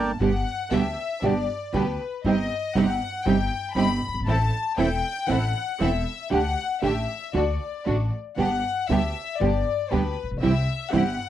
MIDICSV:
0, 0, Header, 1, 6, 480
1, 0, Start_track
1, 0, Key_signature, 1, "major"
1, 0, Tempo, 510638
1, 198, Time_signature, 4, 2, 24, 8
1, 10613, End_track
2, 0, Start_track
2, 0, Title_t, "Violin section"
2, 0, Program_c, 0, 48
2, 0, Note_on_c, 0, 81, 62
2, 198, Note_off_c, 0, 81, 0
2, 203, Note_on_c, 0, 78, 91
2, 649, Note_off_c, 0, 78, 0
2, 668, Note_on_c, 0, 76, 84
2, 1156, Note_off_c, 0, 76, 0
2, 1166, Note_on_c, 0, 74, 90
2, 1629, Note_on_c, 0, 71, 76
2, 1643, Note_off_c, 0, 74, 0
2, 1994, Note_off_c, 0, 71, 0
2, 2119, Note_on_c, 0, 75, 86
2, 2561, Note_off_c, 0, 75, 0
2, 2579, Note_on_c, 0, 78, 95
2, 3046, Note_on_c, 0, 79, 95
2, 3060, Note_off_c, 0, 78, 0
2, 3524, Note_on_c, 0, 83, 95
2, 3534, Note_off_c, 0, 79, 0
2, 3866, Note_off_c, 0, 83, 0
2, 4007, Note_on_c, 0, 81, 94
2, 4456, Note_off_c, 0, 81, 0
2, 4502, Note_on_c, 0, 79, 104
2, 4969, Note_on_c, 0, 78, 96
2, 4980, Note_off_c, 0, 79, 0
2, 5455, Note_off_c, 0, 78, 0
2, 5476, Note_on_c, 0, 76, 81
2, 5948, Note_off_c, 0, 76, 0
2, 5958, Note_on_c, 0, 78, 93
2, 6397, Note_off_c, 0, 78, 0
2, 6436, Note_on_c, 0, 76, 85
2, 6912, Note_off_c, 0, 76, 0
2, 6923, Note_on_c, 0, 74, 74
2, 7642, Note_off_c, 0, 74, 0
2, 7871, Note_on_c, 0, 78, 88
2, 8324, Note_off_c, 0, 78, 0
2, 8348, Note_on_c, 0, 76, 82
2, 8822, Note_on_c, 0, 74, 87
2, 8837, Note_off_c, 0, 76, 0
2, 9311, Note_off_c, 0, 74, 0
2, 9314, Note_on_c, 0, 71, 81
2, 9677, Note_off_c, 0, 71, 0
2, 9782, Note_on_c, 0, 76, 86
2, 10235, Note_off_c, 0, 76, 0
2, 10253, Note_on_c, 0, 78, 89
2, 10613, Note_off_c, 0, 78, 0
2, 10613, End_track
3, 0, Start_track
3, 0, Title_t, "Bandoneon"
3, 0, Program_c, 1, 23
3, 0, Note_on_c, 1, 70, 72
3, 0, Note_on_c, 1, 74, 76
3, 0, Note_on_c, 1, 79, 78
3, 104, Note_off_c, 1, 74, 0
3, 111, Note_off_c, 1, 70, 0
3, 111, Note_off_c, 1, 79, 0
3, 10613, End_track
4, 0, Start_track
4, 0, Title_t, "String section"
4, 0, Program_c, 2, 48
4, 197, Note_on_c, 2, 59, 67
4, 201, Note_on_c, 2, 62, 61
4, 203, Note_on_c, 2, 67, 79
4, 399, Note_off_c, 2, 59, 0
4, 401, Note_off_c, 2, 62, 0
4, 402, Note_off_c, 2, 67, 0
4, 677, Note_on_c, 2, 59, 76
4, 679, Note_on_c, 2, 62, 67
4, 683, Note_on_c, 2, 67, 89
4, 882, Note_off_c, 2, 59, 0
4, 883, Note_off_c, 2, 62, 0
4, 885, Note_off_c, 2, 67, 0
4, 1155, Note_on_c, 2, 59, 64
4, 1161, Note_on_c, 2, 62, 63
4, 1163, Note_on_c, 2, 67, 72
4, 1360, Note_off_c, 2, 59, 0
4, 1362, Note_off_c, 2, 62, 0
4, 1363, Note_off_c, 2, 67, 0
4, 1642, Note_on_c, 2, 59, 74
4, 1642, Note_on_c, 2, 62, 63
4, 1647, Note_on_c, 2, 67, 78
4, 1843, Note_off_c, 2, 59, 0
4, 1843, Note_off_c, 2, 62, 0
4, 1845, Note_off_c, 2, 67, 0
4, 2119, Note_on_c, 2, 60, 80
4, 2125, Note_on_c, 2, 63, 68
4, 2125, Note_on_c, 2, 67, 76
4, 2319, Note_off_c, 2, 60, 0
4, 2322, Note_off_c, 2, 63, 0
4, 2322, Note_off_c, 2, 67, 0
4, 2597, Note_on_c, 2, 60, 80
4, 2600, Note_on_c, 2, 63, 70
4, 2601, Note_on_c, 2, 67, 85
4, 2795, Note_off_c, 2, 60, 0
4, 2796, Note_off_c, 2, 63, 0
4, 2797, Note_off_c, 2, 67, 0
4, 3068, Note_on_c, 2, 60, 70
4, 3071, Note_on_c, 2, 63, 63
4, 3072, Note_on_c, 2, 67, 77
4, 3268, Note_off_c, 2, 60, 0
4, 3269, Note_off_c, 2, 63, 0
4, 3270, Note_off_c, 2, 67, 0
4, 3538, Note_on_c, 2, 60, 68
4, 3540, Note_on_c, 2, 63, 69
4, 3544, Note_on_c, 2, 67, 84
4, 3742, Note_off_c, 2, 60, 0
4, 3743, Note_off_c, 2, 63, 0
4, 3745, Note_off_c, 2, 67, 0
4, 4023, Note_on_c, 2, 60, 78
4, 4024, Note_on_c, 2, 64, 72
4, 4026, Note_on_c, 2, 69, 81
4, 4221, Note_off_c, 2, 60, 0
4, 4222, Note_off_c, 2, 64, 0
4, 4223, Note_off_c, 2, 69, 0
4, 4494, Note_on_c, 2, 64, 79
4, 4495, Note_on_c, 2, 60, 81
4, 4498, Note_on_c, 2, 69, 85
4, 4696, Note_off_c, 2, 64, 0
4, 4697, Note_off_c, 2, 60, 0
4, 4698, Note_off_c, 2, 69, 0
4, 4979, Note_on_c, 2, 60, 71
4, 4981, Note_on_c, 2, 64, 71
4, 4983, Note_on_c, 2, 69, 76
4, 5181, Note_off_c, 2, 60, 0
4, 5182, Note_off_c, 2, 64, 0
4, 5183, Note_off_c, 2, 69, 0
4, 5462, Note_on_c, 2, 60, 76
4, 5464, Note_on_c, 2, 64, 67
4, 5465, Note_on_c, 2, 69, 81
4, 5662, Note_off_c, 2, 60, 0
4, 5663, Note_off_c, 2, 64, 0
4, 5664, Note_off_c, 2, 69, 0
4, 5937, Note_on_c, 2, 57, 70
4, 5938, Note_on_c, 2, 62, 67
4, 5941, Note_on_c, 2, 67, 87
4, 6141, Note_off_c, 2, 57, 0
4, 6141, Note_off_c, 2, 62, 0
4, 6142, Note_off_c, 2, 67, 0
4, 6422, Note_on_c, 2, 57, 75
4, 6423, Note_on_c, 2, 62, 70
4, 6424, Note_on_c, 2, 67, 86
4, 6624, Note_off_c, 2, 57, 0
4, 6624, Note_off_c, 2, 62, 0
4, 6625, Note_off_c, 2, 67, 0
4, 6903, Note_on_c, 2, 57, 61
4, 6904, Note_on_c, 2, 62, 58
4, 6909, Note_on_c, 2, 66, 80
4, 7108, Note_off_c, 2, 57, 0
4, 7108, Note_off_c, 2, 62, 0
4, 7111, Note_off_c, 2, 66, 0
4, 7390, Note_on_c, 2, 57, 71
4, 7390, Note_on_c, 2, 66, 70
4, 7393, Note_on_c, 2, 62, 68
4, 7594, Note_off_c, 2, 57, 0
4, 7594, Note_off_c, 2, 66, 0
4, 7595, Note_off_c, 2, 62, 0
4, 7884, Note_on_c, 2, 59, 69
4, 7885, Note_on_c, 2, 62, 66
4, 7887, Note_on_c, 2, 67, 81
4, 8083, Note_off_c, 2, 59, 0
4, 8084, Note_off_c, 2, 62, 0
4, 8084, Note_off_c, 2, 67, 0
4, 8372, Note_on_c, 2, 59, 79
4, 8372, Note_on_c, 2, 62, 69
4, 8375, Note_on_c, 2, 67, 86
4, 8570, Note_off_c, 2, 59, 0
4, 8570, Note_off_c, 2, 62, 0
4, 8571, Note_off_c, 2, 67, 0
4, 8850, Note_on_c, 2, 59, 64
4, 8854, Note_on_c, 2, 62, 62
4, 8854, Note_on_c, 2, 67, 71
4, 9047, Note_off_c, 2, 59, 0
4, 9049, Note_off_c, 2, 62, 0
4, 9049, Note_off_c, 2, 67, 0
4, 9320, Note_on_c, 2, 59, 74
4, 9323, Note_on_c, 2, 62, 64
4, 9325, Note_on_c, 2, 67, 76
4, 9522, Note_off_c, 2, 59, 0
4, 9524, Note_off_c, 2, 62, 0
4, 9525, Note_off_c, 2, 67, 0
4, 9802, Note_on_c, 2, 60, 75
4, 9806, Note_on_c, 2, 64, 71
4, 9806, Note_on_c, 2, 67, 77
4, 10003, Note_off_c, 2, 60, 0
4, 10005, Note_off_c, 2, 64, 0
4, 10005, Note_off_c, 2, 67, 0
4, 10275, Note_on_c, 2, 60, 77
4, 10278, Note_on_c, 2, 64, 70
4, 10280, Note_on_c, 2, 67, 85
4, 10477, Note_off_c, 2, 60, 0
4, 10478, Note_off_c, 2, 64, 0
4, 10479, Note_off_c, 2, 67, 0
4, 10613, End_track
5, 0, Start_track
5, 0, Title_t, "Nylon-string guitar"
5, 0, Program_c, 3, 24
5, 0, Note_on_c, 3, 57, 72
5, 0, Note_on_c, 3, 58, 65
5, 0, Note_on_c, 3, 62, 69
5, 103, Note_off_c, 3, 62, 0
5, 105, Note_off_c, 3, 58, 0
5, 106, Note_off_c, 3, 57, 0
5, 191, Note_on_c, 3, 47, 61
5, 193, Note_on_c, 3, 50, 71
5, 200, Note_on_c, 3, 55, 77
5, 202, Note_on_c, 3, 67, 79
5, 205, Note_on_c, 3, 59, 75
5, 279, Note_off_c, 3, 47, 0
5, 280, Note_off_c, 3, 50, 0
5, 283, Note_off_c, 3, 55, 0
5, 284, Note_off_c, 3, 67, 0
5, 286, Note_off_c, 3, 59, 0
5, 668, Note_on_c, 3, 47, 83
5, 672, Note_on_c, 3, 50, 86
5, 674, Note_on_c, 3, 55, 88
5, 674, Note_on_c, 3, 59, 98
5, 676, Note_on_c, 3, 67, 78
5, 759, Note_off_c, 3, 47, 0
5, 761, Note_off_c, 3, 50, 0
5, 762, Note_off_c, 3, 55, 0
5, 762, Note_off_c, 3, 59, 0
5, 763, Note_off_c, 3, 67, 0
5, 1152, Note_on_c, 3, 47, 78
5, 1155, Note_on_c, 3, 50, 61
5, 1157, Note_on_c, 3, 59, 84
5, 1159, Note_on_c, 3, 55, 78
5, 1161, Note_on_c, 3, 67, 77
5, 1241, Note_off_c, 3, 47, 0
5, 1242, Note_off_c, 3, 50, 0
5, 1244, Note_off_c, 3, 55, 0
5, 1244, Note_off_c, 3, 59, 0
5, 1246, Note_off_c, 3, 67, 0
5, 1622, Note_on_c, 3, 47, 84
5, 1627, Note_on_c, 3, 55, 83
5, 1629, Note_on_c, 3, 50, 76
5, 1632, Note_on_c, 3, 59, 72
5, 1636, Note_on_c, 3, 67, 92
5, 1716, Note_off_c, 3, 47, 0
5, 1718, Note_off_c, 3, 55, 0
5, 1719, Note_off_c, 3, 50, 0
5, 1721, Note_off_c, 3, 59, 0
5, 1723, Note_off_c, 3, 67, 0
5, 2114, Note_on_c, 3, 48, 65
5, 2118, Note_on_c, 3, 55, 77
5, 2122, Note_on_c, 3, 60, 76
5, 2123, Note_on_c, 3, 63, 77
5, 2127, Note_on_c, 3, 67, 78
5, 2200, Note_off_c, 3, 48, 0
5, 2202, Note_off_c, 3, 55, 0
5, 2204, Note_off_c, 3, 60, 0
5, 2205, Note_off_c, 3, 63, 0
5, 2206, Note_off_c, 3, 67, 0
5, 2586, Note_on_c, 3, 55, 82
5, 2587, Note_on_c, 3, 48, 84
5, 2588, Note_on_c, 3, 60, 86
5, 2594, Note_on_c, 3, 63, 86
5, 2597, Note_on_c, 3, 67, 97
5, 2673, Note_off_c, 3, 55, 0
5, 2674, Note_off_c, 3, 48, 0
5, 2674, Note_off_c, 3, 60, 0
5, 2677, Note_off_c, 3, 63, 0
5, 2679, Note_off_c, 3, 67, 0
5, 3059, Note_on_c, 3, 48, 80
5, 3064, Note_on_c, 3, 60, 77
5, 3065, Note_on_c, 3, 55, 81
5, 3069, Note_on_c, 3, 63, 78
5, 3074, Note_on_c, 3, 67, 78
5, 3147, Note_off_c, 3, 48, 0
5, 3149, Note_off_c, 3, 60, 0
5, 3150, Note_off_c, 3, 55, 0
5, 3152, Note_off_c, 3, 63, 0
5, 3154, Note_off_c, 3, 67, 0
5, 3528, Note_on_c, 3, 48, 74
5, 3535, Note_on_c, 3, 55, 82
5, 3538, Note_on_c, 3, 60, 83
5, 3541, Note_on_c, 3, 63, 87
5, 3543, Note_on_c, 3, 67, 88
5, 3621, Note_off_c, 3, 48, 0
5, 3624, Note_off_c, 3, 55, 0
5, 3625, Note_off_c, 3, 60, 0
5, 3627, Note_off_c, 3, 63, 0
5, 3628, Note_off_c, 3, 67, 0
5, 4024, Note_on_c, 3, 52, 70
5, 4024, Note_on_c, 3, 57, 73
5, 4028, Note_on_c, 3, 60, 75
5, 4032, Note_on_c, 3, 64, 78
5, 4106, Note_off_c, 3, 52, 0
5, 4106, Note_off_c, 3, 57, 0
5, 4108, Note_off_c, 3, 60, 0
5, 4110, Note_off_c, 3, 64, 0
5, 4491, Note_on_c, 3, 52, 82
5, 4491, Note_on_c, 3, 57, 86
5, 4495, Note_on_c, 3, 60, 99
5, 4499, Note_on_c, 3, 64, 96
5, 4578, Note_off_c, 3, 52, 0
5, 4578, Note_off_c, 3, 57, 0
5, 4580, Note_off_c, 3, 60, 0
5, 4581, Note_off_c, 3, 64, 0
5, 4951, Note_on_c, 3, 52, 79
5, 4960, Note_on_c, 3, 57, 82
5, 4963, Note_on_c, 3, 60, 87
5, 4966, Note_on_c, 3, 64, 81
5, 5049, Note_off_c, 3, 52, 0
5, 5054, Note_off_c, 3, 57, 0
5, 5055, Note_off_c, 3, 60, 0
5, 5057, Note_off_c, 3, 64, 0
5, 5451, Note_on_c, 3, 52, 83
5, 5459, Note_on_c, 3, 57, 83
5, 5463, Note_on_c, 3, 60, 87
5, 5465, Note_on_c, 3, 64, 94
5, 5540, Note_off_c, 3, 52, 0
5, 5543, Note_off_c, 3, 57, 0
5, 5546, Note_off_c, 3, 60, 0
5, 5547, Note_off_c, 3, 64, 0
5, 5922, Note_on_c, 3, 50, 77
5, 5929, Note_on_c, 3, 57, 72
5, 5931, Note_on_c, 3, 62, 73
5, 5935, Note_on_c, 3, 67, 91
5, 6015, Note_off_c, 3, 50, 0
5, 6019, Note_off_c, 3, 57, 0
5, 6020, Note_off_c, 3, 62, 0
5, 6022, Note_off_c, 3, 67, 0
5, 6408, Note_on_c, 3, 50, 78
5, 6412, Note_on_c, 3, 57, 91
5, 6412, Note_on_c, 3, 62, 88
5, 6415, Note_on_c, 3, 67, 93
5, 6499, Note_off_c, 3, 50, 0
5, 6501, Note_off_c, 3, 57, 0
5, 6501, Note_off_c, 3, 62, 0
5, 6502, Note_off_c, 3, 67, 0
5, 6891, Note_on_c, 3, 50, 65
5, 6899, Note_on_c, 3, 57, 74
5, 6901, Note_on_c, 3, 62, 85
5, 6904, Note_on_c, 3, 66, 70
5, 6983, Note_off_c, 3, 50, 0
5, 6987, Note_off_c, 3, 57, 0
5, 6988, Note_off_c, 3, 62, 0
5, 6989, Note_off_c, 3, 66, 0
5, 7384, Note_on_c, 3, 50, 67
5, 7387, Note_on_c, 3, 57, 81
5, 7388, Note_on_c, 3, 62, 71
5, 7396, Note_on_c, 3, 66, 75
5, 7472, Note_off_c, 3, 50, 0
5, 7474, Note_off_c, 3, 57, 0
5, 7475, Note_off_c, 3, 62, 0
5, 7478, Note_off_c, 3, 66, 0
5, 7859, Note_on_c, 3, 47, 66
5, 7865, Note_on_c, 3, 50, 70
5, 7866, Note_on_c, 3, 55, 63
5, 7873, Note_on_c, 3, 59, 82
5, 7876, Note_on_c, 3, 67, 78
5, 7952, Note_off_c, 3, 47, 0
5, 7955, Note_off_c, 3, 50, 0
5, 7956, Note_off_c, 3, 55, 0
5, 7959, Note_off_c, 3, 59, 0
5, 7960, Note_off_c, 3, 67, 0
5, 8354, Note_on_c, 3, 47, 75
5, 8360, Note_on_c, 3, 50, 85
5, 8363, Note_on_c, 3, 55, 85
5, 8366, Note_on_c, 3, 59, 87
5, 8366, Note_on_c, 3, 67, 85
5, 8443, Note_off_c, 3, 47, 0
5, 8445, Note_off_c, 3, 50, 0
5, 8447, Note_off_c, 3, 55, 0
5, 8448, Note_off_c, 3, 59, 0
5, 8449, Note_off_c, 3, 67, 0
5, 8834, Note_on_c, 3, 47, 62
5, 8839, Note_on_c, 3, 50, 73
5, 8840, Note_on_c, 3, 59, 68
5, 8841, Note_on_c, 3, 55, 76
5, 8848, Note_on_c, 3, 67, 82
5, 8922, Note_off_c, 3, 47, 0
5, 8925, Note_off_c, 3, 50, 0
5, 8925, Note_off_c, 3, 59, 0
5, 8926, Note_off_c, 3, 55, 0
5, 8929, Note_off_c, 3, 67, 0
5, 9311, Note_on_c, 3, 47, 76
5, 9315, Note_on_c, 3, 50, 76
5, 9317, Note_on_c, 3, 55, 77
5, 9320, Note_on_c, 3, 59, 78
5, 9321, Note_on_c, 3, 67, 85
5, 9400, Note_off_c, 3, 47, 0
5, 9402, Note_off_c, 3, 50, 0
5, 9404, Note_off_c, 3, 55, 0
5, 9405, Note_off_c, 3, 59, 0
5, 9406, Note_off_c, 3, 67, 0
5, 9796, Note_on_c, 3, 48, 76
5, 9801, Note_on_c, 3, 52, 80
5, 9803, Note_on_c, 3, 60, 73
5, 9804, Note_on_c, 3, 55, 83
5, 9804, Note_on_c, 3, 64, 82
5, 9883, Note_off_c, 3, 48, 0
5, 9886, Note_off_c, 3, 52, 0
5, 9886, Note_off_c, 3, 60, 0
5, 9887, Note_off_c, 3, 55, 0
5, 9887, Note_off_c, 3, 64, 0
5, 10269, Note_on_c, 3, 48, 82
5, 10273, Note_on_c, 3, 52, 90
5, 10273, Note_on_c, 3, 55, 86
5, 10275, Note_on_c, 3, 60, 85
5, 10276, Note_on_c, 3, 64, 89
5, 10357, Note_off_c, 3, 48, 0
5, 10359, Note_off_c, 3, 52, 0
5, 10359, Note_off_c, 3, 55, 0
5, 10360, Note_off_c, 3, 60, 0
5, 10361, Note_off_c, 3, 64, 0
5, 10613, End_track
6, 0, Start_track
6, 0, Title_t, "Upright bass"
6, 0, Program_c, 4, 32
6, 0, Note_on_c, 4, 31, 66
6, 127, Note_off_c, 4, 31, 0
6, 190, Note_on_c, 4, 31, 80
6, 396, Note_off_c, 4, 31, 0
6, 668, Note_on_c, 4, 38, 78
6, 877, Note_off_c, 4, 38, 0
6, 1148, Note_on_c, 4, 31, 89
6, 1356, Note_off_c, 4, 31, 0
6, 1634, Note_on_c, 4, 38, 93
6, 1839, Note_off_c, 4, 38, 0
6, 2110, Note_on_c, 4, 31, 84
6, 2314, Note_off_c, 4, 31, 0
6, 2588, Note_on_c, 4, 31, 84
6, 2790, Note_off_c, 4, 31, 0
6, 3067, Note_on_c, 4, 31, 94
6, 3267, Note_off_c, 4, 31, 0
6, 3526, Note_on_c, 4, 31, 93
6, 3736, Note_off_c, 4, 31, 0
6, 3828, Note_on_c, 4, 30, 47
6, 3888, Note_off_c, 4, 30, 0
6, 3893, Note_on_c, 4, 31, 57
6, 3942, Note_off_c, 4, 31, 0
6, 3948, Note_on_c, 4, 32, 72
6, 4006, Note_off_c, 4, 32, 0
6, 4011, Note_on_c, 4, 33, 92
6, 4216, Note_off_c, 4, 33, 0
6, 4492, Note_on_c, 4, 28, 81
6, 4695, Note_off_c, 4, 28, 0
6, 4978, Note_on_c, 4, 33, 102
6, 5181, Note_off_c, 4, 33, 0
6, 5455, Note_on_c, 4, 28, 88
6, 5659, Note_off_c, 4, 28, 0
6, 5945, Note_on_c, 4, 38, 90
6, 6145, Note_off_c, 4, 38, 0
6, 6415, Note_on_c, 4, 33, 77
6, 6620, Note_off_c, 4, 33, 0
6, 6906, Note_on_c, 4, 38, 91
6, 7109, Note_off_c, 4, 38, 0
6, 7398, Note_on_c, 4, 33, 88
6, 7598, Note_off_c, 4, 33, 0
6, 7876, Note_on_c, 4, 31, 88
6, 8079, Note_off_c, 4, 31, 0
6, 8361, Note_on_c, 4, 38, 83
6, 8564, Note_off_c, 4, 38, 0
6, 8847, Note_on_c, 4, 31, 97
6, 9046, Note_off_c, 4, 31, 0
6, 9327, Note_on_c, 4, 38, 92
6, 9526, Note_off_c, 4, 38, 0
6, 9619, Note_on_c, 4, 33, 43
6, 9680, Note_off_c, 4, 33, 0
6, 9693, Note_on_c, 4, 34, 59
6, 9738, Note_off_c, 4, 34, 0
6, 9744, Note_on_c, 4, 35, 64
6, 9803, Note_off_c, 4, 35, 0
6, 9807, Note_on_c, 4, 36, 85
6, 10006, Note_off_c, 4, 36, 0
6, 10276, Note_on_c, 4, 31, 85
6, 10477, Note_off_c, 4, 31, 0
6, 10613, End_track
0, 0, End_of_file